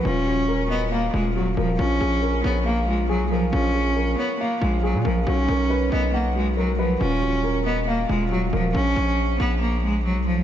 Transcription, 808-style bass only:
X:1
M:4/4
L:1/16
Q:1/4=138
K:Bbphr
V:1 name="808-style bass" clef=bass
E,,,8- E,,,2 E,,,4 E,,,2 | B,,,2 B,,,4 B,,,6- B,,, C,,3 | B,,,6 z4 B,,,3 B,, B,,,2 | =B,,,2 B,,,4 B,,,8- B,,,2 |
E,,,8- E,,,2 E,,,4 E,,,2 | B,,,2 B,,,4 B,,,6- B,,, C,,3 |]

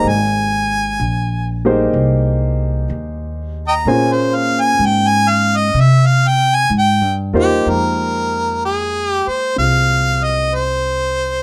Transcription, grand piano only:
X:1
M:4/4
L:1/8
Q:"Swing" 1/4=63
K:Ab
V:1 name="Grand piano"
z3 [B,EGAc]3 z2 | [B,DFAc] z6 [B,EFGBc] | [K:Fm] [A,B,Eg]4 [CFA]4 |]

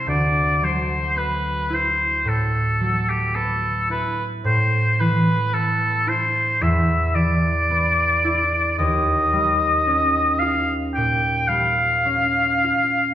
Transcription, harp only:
X:1
M:4/4
L:1/8
Q:1/4=55
K:Dmix
V:1 name="Harp"
[D,,E] F, B, E A,, F, B, E | A,, E, B, E E,, E, B, E | [K:Eb] E,, G, _D F B,, G, D F |]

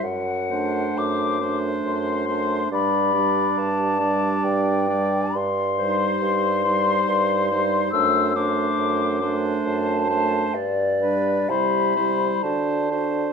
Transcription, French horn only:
X:1
M:3/4
L:1/8
Q:1/4=69
K:Dmix
V:1 name="French horn" clef=bass
z A,2 A,2 A, | G, G,2 G,2 G, | z G,2 G,2 G, | A, A,2 A,2 A, |
z G, G, G, D D |]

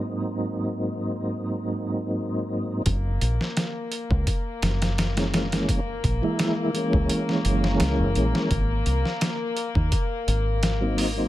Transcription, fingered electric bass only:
X:1
M:4/4
L:1/16
Q:"Swing 16ths" 1/4=85
K:Gbmix
V:1 name="Fingered electric bass" clef=bass
z16 | G,,,2 B,,, z4 D,, z2 G,,,6- | G,,,2 B,,, z4 D,, z2 G,,,2 D,, G,,, B,,, z | A,,,2 =C,, z4 E,, z2 A,,,6 |]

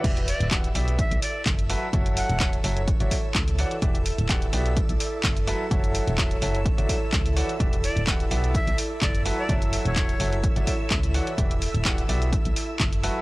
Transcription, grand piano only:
X:1
M:4/4
L:1/16
Q:"Swing 16ths" 1/4=127
K:Bm
V:1 name="Grand piano"
[E,FGde] z3 [E,FGdf] z [B,FGde]2 z6 [F,FABe] z | [F,FAce]4 [F,Fce] z [F,FAce] z2 [F,Fcde] z4 [E,Fcdf] z | [E,FGde] z3 [E,FGdf] z [B,FGde]2 z6 [F,FABe] z | [F,FAce]4 [F,FAce] z [F,FAce] z2 [F,Fcde] z4 [E,Fcdf] z |
[E,FGde] z3 [E,FGdf] z [B,FGde]2 z6 [F,FABe] z | [F,FAce]4 [F,FAce] z [F,FAce] z2 [F,Fcde] z4 [E,Fcdf] z | [E,FGde] z3 [E,FGdf] z [B,FGde]2 z6 [F,FABe] z |]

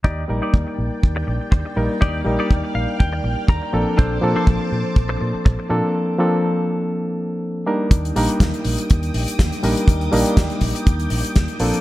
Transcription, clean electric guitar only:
X:1
M:4/4
L:1/16
Q:"Swing 16ths" 1/4=122
K:Bb
V:1 name="Clean electric guitar"
[EGd]2 z [EGd] z12 | [EGd]2 z [EGd] z2 f2 g4 b4 | [DAc]2 z [DAc] z12 | z16 |
z16 | z16 |]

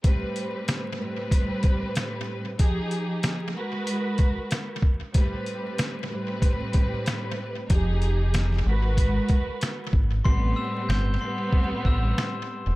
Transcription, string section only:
X:1
M:4/4
L:1/8
Q:"Swing 16ths" 1/4=94
K:Am
V:1 name="String section"
[A,,G,CB]3 [A,,G,CB]4- [A,,G,CB] | [F,_EG_A]3 [^G,^F^AB]4 z | [A,,G,CB]3 [A,,G,CB]4- [A,,G,CB] | [F,_EG_A]3 [^G,^F^AB]4 z |
[A,,G,B,C]3 [A,,G,B,C]4- [A,,G,B,C] |]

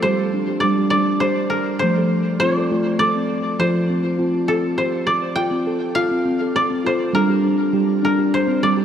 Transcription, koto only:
X:1
M:6/8
L:1/8
Q:3/8=68
K:F
V:1 name="Koto"
c2 d d c B | c2 d2 d2 | c3 A c d | g2 f2 d c |
B3 B c d |]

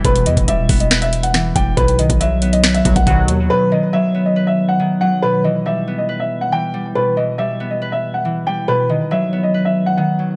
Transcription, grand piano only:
X:1
M:4/4
L:1/16
Q:1/4=139
K:Em
V:1 name="Grand piano"
B2 ^d2 e3 d2 e2 f3 g2 | B2 ^d2 e3 d2 e2 f f4 | B2 ^d2 e3 d2 e2 f3 f2 | B2 ^d2 e3 d2 e2 f g4 |
B2 ^d2 e3 d2 e2 f3 g2 | B2 ^d2 e3 d2 e2 f f4 |]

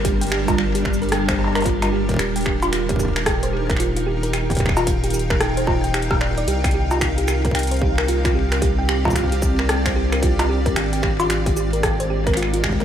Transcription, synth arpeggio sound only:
X:1
M:4/4
L:1/16
Q:"Swing 16ths" 1/4=112
K:Eb
V:1 name="Synth arpeggio sound"
G g G F F G G B g c G B F F G B | G g G F F G G B g c G B F F G B | G g G F F G G B g c F g G G d d | G g G F F G G B g c G B F F G B |
G g G F F G G B g c G B F F G B | G g G F F G G B g c G B F F G B |]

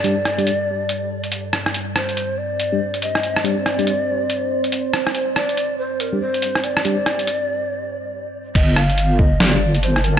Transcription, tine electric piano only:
X:1
M:4/4
L:1/16
Q:"Swing 16ths" 1/4=141
K:Cdor
V:1 name="Tine electric piano"
[G,DG] z2 [G,DG] z12 | z8 z [G,DG] z6 | [G,DG] z2 [G,DG] z12 | z8 z [G,DG] z6 |
[G,DG] z12 z3 | z8 z [G,DG] z6 |]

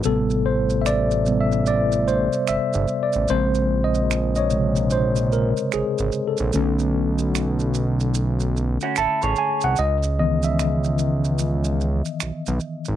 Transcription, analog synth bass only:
X:1
M:4/4
L:1/16
Q:"Swing 16ths" 1/4=74
K:A
V:1 name="Analog synth bass" clef=bass
A,,,8- A,,,3 z =G,,, G,,, z A,,, | ^A,,,8- A,,,3 z G,,, G,,, z A,,, | B,,,8- B,,,3 z A,,, A,,, z =C,, | C,,8- C,,3 z B,,, B,,, z G,,, |]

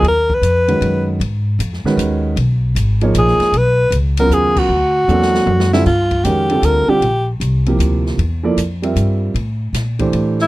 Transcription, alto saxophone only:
X:1
M:3/4
L:1/8
Q:"Swing" 1/4=155
K:G#dor
V:1 name="Alto saxophone"
A B4 z | z6 | z4 G2 | B2 z A G F- |
F4- F =E | [K:Gdor] F2 G2 B G- | G z4 z | z6 |
z4 z E |]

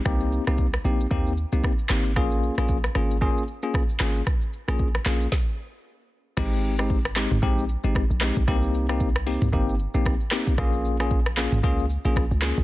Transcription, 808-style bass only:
X:1
M:4/4
L:1/16
Q:"Swing 16ths" 1/4=114
K:Bbdor
V:1 name="808-style bass" clef=bass
C,,3 C,,3 B,,,2 E,,3 C,, z2 A,,,2 | B,,,3 B,,,3 A,,,3 z4 z A,,,2 | z3 B,,,3 B,,,2 z8 | A,,,6- A,,, G,,, B,,,3 A,,,2 B,,,2 B,,, |
C,,6- C,, C,, G,,,3 B,,,2 z3 | B,,,6- B,,, A,,, D,,3 B,,,2 D,,2 A,,, |]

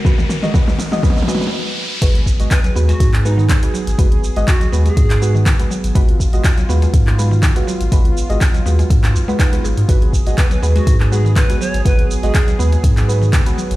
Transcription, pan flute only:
X:1
M:4/4
L:1/16
Q:"Swing 16ths" 1/4=122
K:G#dor
V:1 name="Pan flute"
z16 | z4 B B z F2 z D2 z4 | z4 F2 z G4 z4 z | z16 |
z16 | z4 B B z F2 z G2 B2 c2 | B2 z G4 z8 z |]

